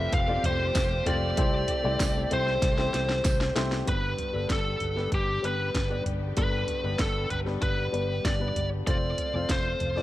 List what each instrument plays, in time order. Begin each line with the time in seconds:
Already playing: string section F3 A3 C4 G4, upright piano A3 C4 F4 G4 B4 C5, lead electric guitar E5
0.13 fingered electric bass F1, lead electric guitar F5, kick, closed hi-hat
0.28 upright piano A3 C4 F4 G4 D5
0.44 fingered electric bass F1, lead electric guitar C5, closed hi-hat, floor tom
0.75 fingered electric bass F1, kick, snare, closed hi-hat, tambourine
1.06 fingered electric bass F1, upright piano A3 C4 F4 G4 C5, lead electric guitar D5, closed hi-hat, floor tom
1.37 fingered electric bass C2, upright piano C3 A3 C4 E4 G4 C5, string section E3 C4, kick, closed hi-hat
1.68 closed hi-hat, floor tom
1.84 fingered electric bass C2, upright piano A3 C4 E4 G4 D5
2.00 fingered electric bass C2, kick, snare, closed hi-hat, tambourine
2.31 fingered electric bass C2, upright piano A3 C4 E4 G4 C5, lead electric guitar C5, closed hi-hat, floor tom
2.47 snare
2.62 fingered electric bass C2, kick, snare, closed hi-hat
2.78 upright piano A3 C4 E4 G4 C5, snare
2.94 fingered electric bass C2, snare, closed hi-hat
3.09 snare
3.24 fingered electric bass C2, kick, snare, closed hi-hat, tambourine
3.41 snare
3.55 fingered electric bass C2, upright piano A3 C4 E4 G4 C5, snare, closed hi-hat
3.72 snare
3.86 fingered electric bass G1, upright piano G2 G3 B3 D4 B4, string section D3 G3 B3 G4, lead electric guitar B4, kick, closed hi-hat
4.18 closed hi-hat, floor tom
4.33 fingered electric bass G1, upright piano G3 B3 D4 A4
4.50 fingered electric bass G1, lead electric guitar A4, kick, snare, closed hi-hat
4.80 fingered electric bass G1, closed hi-hat, floor tom
4.96 upright piano G3 B3 D4 B4, snare
5.12 fingered electric bass G1, lead electric guitar G4, kick, closed hi-hat
5.43 fingered electric bass G1, upright piano G3 B3 D4 B4, lead electric guitar B4, closed hi-hat
5.75 fingered electric bass G1, kick, snare, closed hi-hat
5.90 upright piano G3 B3 D4 D5
6.06 fingered electric bass G1, closed hi-hat, floor tom
6.37 fingered electric bass G1, upright piano G2 G3 B3 D4 A4, lead electric guitar B4, kick, closed hi-hat
6.68 closed hi-hat, floor tom
6.84 fingered electric bass G1, upright piano G3 B3 D4 B4
6.99 fingered electric bass G1, lead electric guitar A4, kick, snare, closed hi-hat
7.30 fingered electric bass G1, lead electric guitar B4, closed hi-hat, floor tom
7.46 upright piano G3 B3 D4 B4, snare
7.62 fingered electric bass G1, lead electric guitar B4, kick, closed hi-hat
7.92 fingered electric bass G1, upright piano G3 B3 D4 B4, closed hi-hat
8.25 fingered electric bass G1, lead electric guitar D5, kick, snare, closed hi-hat
8.40 upright piano G3 B3 D4 B4
8.56 fingered electric bass G1, closed hi-hat, floor tom
8.87 fingered electric bass F1, string section C3 F3 A3 F4, upright piano A3 C4 F4 C5, lead electric guitar D5, kick, closed hi-hat
9.18 closed hi-hat, floor tom
9.34 fingered electric bass F1, upright piano A3 C4 F4 C5
9.49 fingered electric bass F1, lead electric guitar C5, kick, snare, closed hi-hat
9.80 fingered electric bass F1, closed hi-hat, floor tom
9.96 upright piano A3 C4 F4 D5, snare